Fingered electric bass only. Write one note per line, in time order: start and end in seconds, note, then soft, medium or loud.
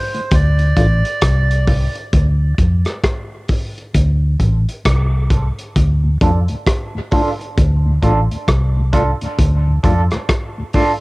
0.32 0.72 D2 loud
0.77 1.02 A1 medium
1.23 1.87 C2 medium
2.13 2.53 D2 medium
2.59 2.83 F2 medium
3.95 4.35 D2 loud
4.40 4.64 A1 medium
4.86 5.50 C2 medium
5.77 6.16 D2 medium
6.22 6.46 F2 medium
7.58 7.97 D2 loud
8.03 8.27 A1 medium
8.48 9.12 C2 medium
9.39 9.79 D2 loud
9.84 10.08 F2 medium